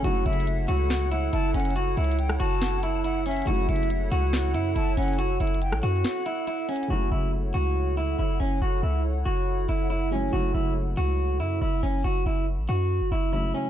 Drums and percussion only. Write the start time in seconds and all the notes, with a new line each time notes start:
0.04 closed hi-hat
0.26 closed hi-hat
0.33 closed hi-hat
0.40 closed hi-hat
0.47 closed hi-hat
0.69 closed hi-hat
0.90 snare, closed hi-hat
1.12 closed hi-hat
1.33 closed hi-hat
1.54 closed hi-hat
1.60 closed hi-hat
1.65 closed hi-hat
1.70 closed hi-hat
1.76 closed hi-hat
1.97 closed hi-hat
2.04 closed hi-hat
2.12 closed hi-hat
2.19 closed hi-hat
2.29 cross-stick
2.40 closed hi-hat
2.62 snare, closed hi-hat
2.83 closed hi-hat
3.04 closed hi-hat
3.26 closed hi-hat, open hi-hat
3.31 closed hi-hat
3.37 closed hi-hat
3.42 closed hi-hat
3.47 closed hi-hat
3.69 closed hi-hat
3.76 closed hi-hat
3.83 closed hi-hat
3.90 closed hi-hat
4.12 closed hi-hat
4.33 snare, closed hi-hat
4.55 closed hi-hat
4.76 closed hi-hat
4.97 closed hi-hat
5.03 closed hi-hat
5.08 closed hi-hat
5.13 closed hi-hat
5.19 closed hi-hat
5.40 closed hi-hat
5.47 closed hi-hat
5.55 closed hi-hat
5.62 closed hi-hat
5.72 cross-stick
5.83 closed hi-hat
6.04 snare, closed hi-hat
6.26 closed hi-hat
6.47 closed hi-hat
6.69 closed hi-hat, open hi-hat
6.76 closed hi-hat
6.83 closed hi-hat